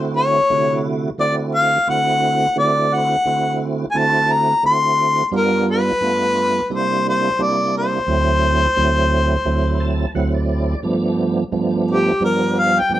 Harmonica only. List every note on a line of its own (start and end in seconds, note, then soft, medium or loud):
0.17 0.81 C#5 loud
1.20 1.35 D5 medium
1.55 1.86 F5 medium
1.90 2.54 F#5 medium
2.59 2.96 D5 medium
2.94 3.62 F#5 medium
3.91 3.99 G#5 medium
3.98 4.34 A5 medium
4.32 4.65 A#5 medium
4.66 5.30 C6 loud
5.36 5.66 A#4 medium
5.71 6.68 B4 loud
6.75 7.05 C5 medium
7.09 7.44 C5 medium
7.43 7.75 D5 medium
7.78 10.13 C5 loud
11.91 12.23 G4 medium
12.25 12.61 A#4 medium
12.60 12.81 F5 medium
12.79 12.92 G5 medium
12.94 13.00 G5 medium